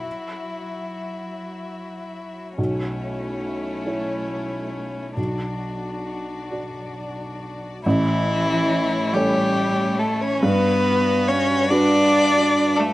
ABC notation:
X:1
M:6/8
L:1/16
Q:3/8=47
K:Amix
V:1 name="Violin"
E12 | C12 | D8- D3 z | E6 G4 A c |
B4 c2 d4- d A |]
V:2 name="String section"
[F,Fe]12 | [A,Ec]12 | [F,Fd]12 | [A,Ec]12 |
[G,FB]12 |]
V:3 name="Felt piano"
F,12 | B,,,6 [Ec]6 | B,,,6 [Fd]6 | A,,,6 [CAc]6 |
G,,6 [DFB]6 |]
V:4 name="Cello"
F,12 | A,12 | F,8- F,3 z | E,6 G,4 A, C |
B,4 C2 D4- D A, |]